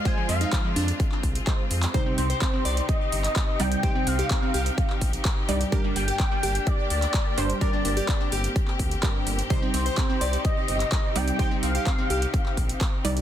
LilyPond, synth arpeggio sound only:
\new Staff \with { instrumentName = "Synth arpeggio sound" } { \time 4/4 \key c \minor \tempo 4 = 127 f'16 f16 f16 ees'16 f16 f16 d'2~ d'16 r16 | c''16 c'16 c'16 c''16 c'16 c'16 d''2~ d''16 r16 | g'16 c'16 c'16 g'16 c'16 c'16 g'2~ g'16 r16 | g'16 g16 g16 g'16 g16 g16 g'2~ g'16 r16 |
bes'16 d'16 d'16 g'16 d'16 d'16 g'2~ g'16 r16 | c''16 c'16 c'16 c''16 c'16 c'16 d''2~ d''16 r16 | g'16 c'16 c'16 g'16 c'16 c'16 g'2~ g'16 r16 | }